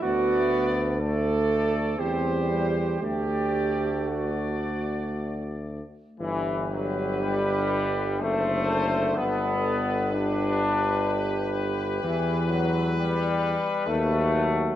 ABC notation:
X:1
M:3/4
L:1/8
Q:1/4=62
K:G
V:1 name="Trumpet section"
d2 d2 c2 | d2 d3 z | B4 c2 | B6- |
B6 |]
V:2 name="Flugelhorn"
F z A2 G2 | G2 F3 z | G4 A2- | A2 G4- |
G3 z F2 |]
V:3 name="Trombone section"
A,2 A,2 G,2 | A,2 A,3 z | E, F, G,2 A,2 | B,2 D3 z |
E, F, G,2 A,2 |]
V:4 name="Trombone" clef=bass
B,2 A,2 C G, | A,4- A, z | D,6- | D,6 |
E,3 z F,2 |]
V:5 name="Tuba" clef=bass
D,,4 E,,2 | D,,4- D,, z | G,,,4 F,,,2 | G,,,6 |
E,,3 z ^D,,2 |]